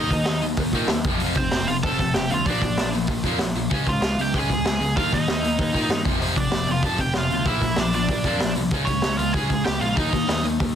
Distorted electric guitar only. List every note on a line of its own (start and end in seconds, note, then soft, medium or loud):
0.00 0.10 D#4 loud
0.10 0.25 D#3 medium
0.10 0.25 A#3 medium
0.26 0.41 D#3 medium
0.26 0.41 A#3 medium
0.42 0.57 D#3 medium
0.42 0.57 A#3 medium
0.58 0.72 D#3 medium
0.58 0.73 A#3 medium
0.74 0.89 D#3 medium
0.74 0.89 A#3 loud
0.74 0.89 D#4 loud
0.91 1.04 D#3 medium
0.91 1.04 A#3 medium
1.06 1.21 F2 loud
1.06 1.21 C3 medium
1.06 1.21 F3 loud
1.23 1.36 F2 medium
1.23 1.37 C3 loud
1.23 1.37 F3 medium
1.38 1.51 F2 medium
1.38 1.51 C3 medium
1.53 1.67 F2 medium
1.53 1.67 C3 medium
1.68 1.82 F2 medium
1.68 1.82 C3 medium
1.84 1.98 F2 medium
1.84 1.99 C3 loud
1.84 1.99 F3 loud
2.00 2.14 F2 medium
2.00 2.14 C3 medium
2.16 2.30 F2 medium
2.16 2.30 C3 medium
2.31 2.45 F2 medium
2.31 2.45 C3 medium
2.47 2.61 A#2 medium
2.47 2.62 F3 loud
2.47 2.62 A#3 loud
2.63 2.77 A#2 medium
2.63 2.77 F3 medium
2.79 2.93 A#2 medium
2.79 2.93 F3 medium
2.94 3.08 A#2 medium
2.94 3.08 F3 medium
3.10 3.23 A#2 medium
3.10 3.24 F3 medium
3.25 3.39 A#2 loud
3.25 3.39 F3 loud
3.25 3.40 A#3 loud
3.41 3.54 A#2 medium
3.41 3.54 F3 medium
3.56 3.69 A#2 medium
3.56 3.70 F3 medium
3.70 3.85 C#3 medium
3.70 3.86 G#3 medium
3.70 3.86 C#4 medium
3.87 4.01 C#3 medium
3.87 4.01 G#3 medium
4.02 4.16 C#3 medium
4.02 4.17 G#3 medium
4.20 4.33 C#3 medium
4.20 4.33 G#3 medium
4.34 4.48 C#3 medium
4.34 4.49 G#3 medium
4.34 4.50 C#4 loud
4.50 4.64 C#3 medium
4.50 4.64 G#3 medium
4.65 4.79 C#3 medium
4.65 4.80 G#3 medium
4.80 4.95 C#3 medium
4.80 4.95 G#3 medium
4.96 5.11 D#3 medium
4.96 5.12 A#3 loud
4.96 5.12 D#4 medium
5.13 5.27 D#3 medium
5.13 5.27 A#3 medium
5.28 5.41 D#3 medium
5.28 5.42 A#3 medium
5.42 5.57 D#3 medium
5.42 5.58 A#3 medium
5.58 5.72 D#3 medium
5.58 5.73 A#3 medium
5.73 5.89 D#3 medium
5.73 5.89 A#3 loud
5.73 5.89 D#4 loud
5.90 6.04 D#3 medium
5.90 6.05 A#3 medium
6.05 6.19 F2 medium
6.05 6.19 C3 medium
6.05 6.20 F3 loud
6.20 6.34 F2 medium
6.20 6.35 C3 medium
6.20 6.36 F3 loud
6.36 6.49 F2 medium
6.36 6.50 C3 medium
6.51 6.66 F2 medium
6.51 6.66 C3 medium
6.67 6.82 F2 medium
6.67 6.82 C3 medium
6.83 6.97 F2 loud
6.83 6.97 C3 medium
6.83 6.99 F3 loud
6.98 7.13 F2 medium
6.98 7.13 C3 medium
7.14 7.29 F2 medium
7.14 7.29 C3 medium
7.31 7.45 F2 medium
7.31 7.45 C3 medium
7.46 7.60 A#2 medium
7.46 7.60 F3 medium
7.46 7.62 A#3 medium
7.61 7.76 A#2 medium
7.61 7.76 F3 medium
7.78 7.92 A#2 medium
7.78 7.92 F3 medium
7.94 8.08 A#2 medium
7.94 8.08 F3 medium
8.09 8.24 A#2 medium
8.09 8.24 F3 medium
8.25 8.39 A#2 medium
8.25 8.40 F3 loud
8.25 8.41 A#3 loud
8.40 8.55 A#2 medium
8.40 8.55 F3 medium
8.56 8.71 A#2 medium
8.56 8.71 F3 medium
8.72 8.87 C#3 medium
8.72 8.87 G#3 medium
8.72 8.87 C#4 medium
8.89 9.02 C#3 medium
8.89 9.03 G#3 medium
9.04 9.18 C#3 medium
9.04 9.18 G#3 medium
9.19 9.33 C#3 medium
9.19 9.33 G#3 medium
9.34 9.48 C#3 medium
9.34 9.49 G#3 loud
9.34 9.50 C#4 loud
9.49 9.64 C#3 medium
9.49 9.65 G#3 medium
9.65 9.80 C#3 medium
9.65 9.80 G#3 medium
9.82 9.96 C#3 medium
9.82 9.96 G#3 medium
9.96 10.11 D#3 medium
9.96 10.12 A#3 medium
9.96 10.12 D#4 medium
10.12 10.27 D#3 medium
10.12 10.27 A#3 medium
10.28 10.42 D#3 medium
10.28 10.43 A#3 medium
10.43 10.58 D#3 medium
10.43 10.58 A#3 medium
10.60 10.74 D#3 medium
10.60 10.74 A#3 medium